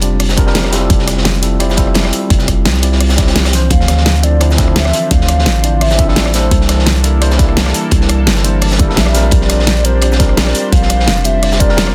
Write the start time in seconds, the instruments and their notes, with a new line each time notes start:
Already playing: 808-style bass F1
0.01 tine electric piano G3 C4 D4 F4 D5, closed hi-hat, shaker
0.20 cross-stick, closed hi-hat, open hi-hat
0.29 snare, shaker
0.37 tine electric piano G3 C4 D4 F4 A#4, kick, closed hi-hat, shaker
0.46 tine electric piano G3 C4 D4 F4 A#4, snare
0.55 snare, closed hi-hat
0.64 cross-stick, snare
0.71 tine electric piano G3 C4 E4 F4 A4, snare, closed hi-hat, open hi-hat, shaker
0.90 808-style bass F1, kick, closed hi-hat
0.99 snare
1.07 cross-stick, snare, closed hi-hat, shaker
1.17 snare
1.25 snare, closed hi-hat
1.34 closed hi-hat, shaker
1.42 tine electric piano G3 C4 E4 F4 A4, closed hi-hat, shaker
1.59 tine electric piano G3 C4 E4 F4 D5, cross-stick, closed hi-hat
1.70 snare, shaker
1.77 tine electric piano G3 C4 E4 F4 A4, kick, snare, closed hi-hat, shaker
1.87 cross-stick
1.94 snare, closed hi-hat
2.03 tine electric piano G3 C4 E4 F4 A4, cross-stick, snare
2.13 closed hi-hat, open hi-hat, shaker
2.30 808-style bass F1, kick, closed hi-hat
2.39 snare, shaker
2.48 kick, cross-stick, closed hi-hat, shaker
2.65 808-style bass C2, snare, closed hi-hat
2.74 snare, shaker
2.82 tine electric piano G3 C4 E4 F4 D5, closed hi-hat, shaker
2.92 snare
3.01 cross-stick, closed hi-hat, open hi-hat
3.09 snare, shaker
3.17 tine electric piano G3 C4 E4 F4 G4, kick, snare, closed hi-hat, shaker
3.28 snare, closed hi-hat
3.36 snare, closed hi-hat
3.45 cross-stick, snare, closed hi-hat, shaker
3.51 tine electric piano E3 F3 C4 D4 C5, snare, closed hi-hat, open hi-hat, shaker
3.70 808-style bass D2, analog synth pad D3 D4 C5, soft synth lead F5, kick, closed hi-hat
3.80 snare
3.88 cross-stick, snare, closed hi-hat, shaker
3.97 snare
4.06 snare, closed hi-hat
4.15 closed hi-hat, shaker
4.23 tine electric piano F3 C4 D4 E4 A4, soft synth lead D5, closed hi-hat, shaker
4.40 tine electric piano F3 C4 D4 E4 D5, cross-stick, closed hi-hat
4.50 snare, shaker
4.58 tine electric piano F3 C4 D4 E4 A4, kick, snare, closed hi-hat, shaker
4.68 cross-stick
4.76 soft synth lead E5, snare, closed hi-hat
4.84 tine electric piano E3 F3 C4 D4 A4, cross-stick, snare
4.93 closed hi-hat, open hi-hat, shaker
5.11 808-style bass D2, soft synth lead F5, kick, closed hi-hat
5.21 snare
5.29 cross-stick, closed hi-hat, shaker
5.39 snare
5.46 808-style bass A1, soft synth lead F5, snare, closed hi-hat
5.56 shaker
5.63 tine electric piano F3 C4 D4 E4 D5, closed hi-hat, shaker
5.81 soft synth lead E5, cross-stick, closed hi-hat, open hi-hat
5.91 snare, shaker
5.98 tine electric piano F3 C4 D4 E4 A4, kick, closed hi-hat, shaker
6.07 tine electric piano F3 C4 D4 E4 A4, soft synth lead D5, snare
6.16 snare, closed hi-hat
6.26 cross-stick, snare
6.32 tine electric piano G3 A#3 D4 E4 A4, soft synth lead C5, snare, closed hi-hat, open hi-hat, shaker
6.51 808-style bass C2, analog synth pad E3 A#3 D4 A4, kick, closed hi-hat
6.61 snare
6.69 cross-stick, snare, closed hi-hat, shaker
6.79 snare
6.86 snare, closed hi-hat
6.96 closed hi-hat, shaker
7.03 tine electric piano G3 A#3 D4 E4 A4, closed hi-hat, shaker
7.21 tine electric piano G3 A#3 D4 E4 C5, cross-stick, closed hi-hat
7.30 snare, shaker
7.38 tine electric piano G3 A#3 D4 E4 A4, kick, snare, closed hi-hat, shaker
7.49 cross-stick
7.57 snare, closed hi-hat
7.64 tine electric piano G3 A#3 D4 E4 A4, cross-stick, snare
7.74 closed hi-hat, open hi-hat, shaker
7.91 808-style bass C2, kick, closed hi-hat
8.01 snare
8.09 cross-stick, closed hi-hat, shaker
8.27 808-style bass G1, snare, closed hi-hat
8.36 snare, shaker
8.44 tine electric piano G3 A#3 D4 E4 C5, closed hi-hat, shaker
8.62 cross-stick, closed hi-hat, open hi-hat
8.71 snare, shaker
8.79 808-style bass G1, tine electric piano G3 A#3 D4 E4 A4, kick, closed hi-hat, shaker
8.88 tine electric piano G3 A#3 D4 E4 A4, snare
8.96 808-style bass A#1, soft synth lead E5, snare, closed hi-hat
9.06 cross-stick, snare
9.13 tine electric piano G3 C4 D4 F4 A#4, analog synth pad G3 C5, snare, closed hi-hat, open hi-hat, shaker
9.31 808-style bass A#1, soft synth lead D5, kick, closed hi-hat
9.41 snare
9.49 cross-stick, snare, closed hi-hat, shaker
9.59 snare
9.67 snare, closed hi-hat
9.77 closed hi-hat, shaker
9.84 tine electric piano G3 C4 D4 F4 A#4, soft synth lead C5, closed hi-hat, shaker
10.01 tine electric piano G3 C4 D4 F4 D5, cross-stick, closed hi-hat
10.12 snare, shaker
10.19 tine electric piano G3 C4 D4 F4 A#4, kick, snare, closed hi-hat, shaker
10.29 cross-stick
10.37 soft synth lead D5, snare, closed hi-hat
10.45 tine electric piano G3 C4 D4 F4 A#4, cross-stick, snare
10.55 closed hi-hat, open hi-hat, shaker
10.72 808-style bass A#1, soft synth lead F5, kick, closed hi-hat
10.82 snare
10.90 cross-stick, closed hi-hat, shaker
11.00 snare
11.08 808-style bass F1, snare, closed hi-hat
11.17 shaker
11.24 tine electric piano G3 C4 D4 F4 D5, soft synth lead E5, closed hi-hat, shaker
11.43 cross-stick, closed hi-hat, open hi-hat
11.52 snare, shaker
11.59 tine electric piano G3 C4 D4 F4 A#4, soft synth lead D5, kick, closed hi-hat, shaker
11.69 tine electric piano G3 C4 D4 F4 A#4, snare
11.77 snare, closed hi-hat
11.87 cross-stick, snare